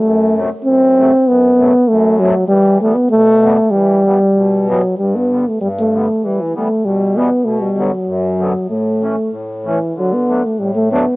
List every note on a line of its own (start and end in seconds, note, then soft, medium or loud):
0.00 0.50 F#2 medium
0.00 0.39 A3 loud
0.35 0.49 C3 medium
0.35 0.50 F#3 soft
0.35 0.50 A3 medium
0.65 1.12 F#2 medium
0.65 1.29 C4 loud
0.98 1.12 C3 medium
0.98 1.12 F#3 medium
0.98 1.12 A3 medium
1.27 1.74 F#2 medium
1.27 1.89 B3 loud
1.59 1.73 C3 medium
1.59 1.73 F#3 medium
1.59 1.73 A3 medium
1.88 2.35 F#2 medium
1.88 2.21 A3 loud
2.19 2.34 C3 medium
2.19 2.47 F#3 medium
2.19 2.35 F#3 medium
2.19 2.35 A3 medium
2.48 2.80 E3 medium
2.48 2.79 G3 loud
2.81 2.95 E3 medium
2.81 2.95 G3 medium
2.81 2.96 A3 medium
2.81 2.96 B3 medium
2.94 3.10 B3 medium
3.11 3.58 B2 medium
3.11 3.72 A3 loud
3.43 3.56 E3 medium
3.43 3.57 G3 medium
3.43 3.57 B3 medium
3.71 4.03 E3 medium
3.71 4.67 G3 loud
4.04 4.18 E3 medium
4.04 4.19 G3 medium
4.04 4.19 B3 medium
4.35 4.83 B2 medium
4.67 4.81 E3 medium
4.67 4.96 F#3 medium
4.67 4.82 G3 medium
4.67 4.82 B3 medium
4.98 5.46 G2 medium
4.98 5.17 G3 medium
5.16 5.49 B3 medium
5.30 5.44 D3 soft
5.30 5.44 G3 soft
5.30 5.45 B3 medium
5.48 5.60 A3 medium
5.61 6.08 G2 medium
5.61 5.68 G3 medium
5.78 6.27 A3 medium
5.93 6.07 D3 medium
5.93 6.07 G3 medium
5.93 6.08 B3 medium
6.23 6.53 E3 medium
6.23 6.42 G3 medium
6.41 6.56 E3 medium
6.54 6.68 E3 soft
6.54 6.68 G3 medium
6.54 6.86 A3 medium
6.54 6.69 B3 medium
6.84 7.31 B2 medium
6.84 7.19 G3 medium
7.15 7.29 E3 medium
7.15 7.30 G3 medium
7.15 7.30 B3 medium
7.15 7.46 B3 medium
7.45 7.92 B2 medium
7.45 7.62 A3 medium
7.60 7.94 G3 medium
7.77 7.91 D3 medium
7.77 7.91 F#3 medium
7.77 7.92 B3 medium
7.92 8.69 F#3 medium
8.07 8.54 F#2 medium
8.39 8.52 D3 medium
8.39 8.53 F#3 medium
8.39 8.53 B3 medium
8.68 9.16 A2 medium
8.68 9.33 A3 medium
9.01 9.15 E3 medium
9.01 9.15 A3 medium
9.01 9.16 C#4 medium
9.31 9.79 A2 medium
9.64 9.78 E3 medium
9.64 9.93 E3 medium
9.64 9.79 A3 soft
9.64 9.79 C#4 medium
9.95 10.43 D3 medium
9.95 10.15 F#3 medium
10.13 10.46 B3 medium
10.28 10.42 F#3 soft
10.28 10.42 A3 soft
10.28 10.43 D4 medium
10.45 10.60 A3 medium
10.58 11.05 A2 medium
10.58 10.74 G3 medium
10.75 10.90 A3 medium
10.91 11.05 F#3 medium
10.91 11.05 A3 medium
10.91 11.16 B3 medium
10.91 11.06 D4 medium